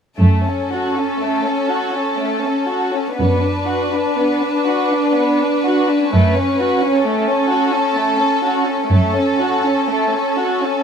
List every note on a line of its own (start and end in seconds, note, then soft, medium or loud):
0.18 1.02 F#2 soft
0.18 0.43 A3 soft
0.18 3.14 C#4 soft
0.18 3.14 A4 soft
0.45 0.71 C#4 soft
0.72 0.97 F#4 soft
0.96 1.21 C#4 soft
1.22 1.46 A3 soft
1.46 1.70 C#4 soft
1.71 1.95 F#4 soft
1.94 2.19 C#4 soft
2.19 2.44 A3 soft
2.43 2.68 C#4 soft
2.68 2.93 F#4 soft
2.93 3.18 C#4 soft
3.17 3.99 F#2 soft
3.17 3.40 B3 soft
3.17 6.13 D4 soft
3.17 7.00 B4 soft
3.41 3.67 D4 soft
3.67 3.93 F#4 soft
3.93 4.18 D4 soft
4.18 4.43 B3 soft
4.43 4.68 D4 soft
4.68 4.93 F#4 soft
4.93 5.17 D4 soft
5.18 5.42 B3 soft
5.42 5.66 D4 soft
5.66 5.89 F#4 soft
5.90 6.13 D4 soft
6.12 6.87 F#2 soft
6.12 6.34 A3 soft
6.12 8.88 C#4 soft
6.36 6.59 C#4 soft
6.60 6.82 F#4 soft
6.83 7.05 C#4 soft
7.05 7.28 A3 soft
7.05 8.91 A4 soft
7.28 7.50 C#4 soft
7.50 7.72 F#4 soft
7.73 7.96 C#4 soft
7.96 8.19 A3 soft
8.20 8.43 C#4 soft
8.45 8.68 F#4 soft
8.67 8.92 C#4 soft
8.91 9.71 F#2 soft
8.91 9.14 A3 soft
8.91 10.83 C#4 soft
8.91 10.83 A4 soft
9.15 9.40 C#4 soft
9.41 9.65 F#4 soft
9.65 9.90 C#4 soft
9.90 10.14 A3 soft
10.14 10.39 C#4 soft
10.38 10.64 F#4 soft
10.64 10.83 C#4 soft